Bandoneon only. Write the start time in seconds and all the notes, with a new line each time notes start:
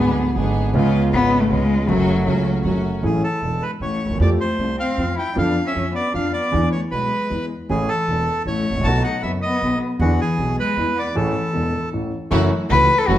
3.05 G#4
3.24 A4
3.62 B4
3.82 C#5
4.21 D5
4.40 C5
4.80 F5
5.19 G5
5.38 F5
5.67 E5
5.95 D5
6.15 F5
6.33 D5
6.72 C#5
6.91 B4
7.70 G#4
7.89 A4
8.47 C#5
8.84 A5
9.04 F#5
9.23 E5
9.42 D#5
10.01 F#4
10.21 G#4
10.60 B4
10.99 D5
11.16 A4